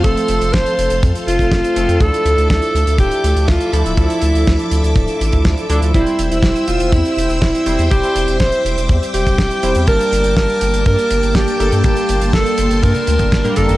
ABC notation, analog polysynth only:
X:1
M:4/4
L:1/16
Q:1/4=122
K:Dm
V:1 name="Analog polysynth"
[F,A,CA]12- [F,A,CA]2 [F,A,CA]2 | [F,DEA]12- [F,DEA]2 [F,DEA]2 | [F,DEA]12- [F,DEA]2 [F,DEA]2 | [G,CEc]12- [G,CEc]2 [G,CEc]2 |
[G,CEc]12- [G,CEc]2 [G,CEc]2 | [G,B,Da]12- [G,B,Da]2 [G,B,DA]2 | [G,B,Da]12- [G,B,Da] [G,B,DB]3 |]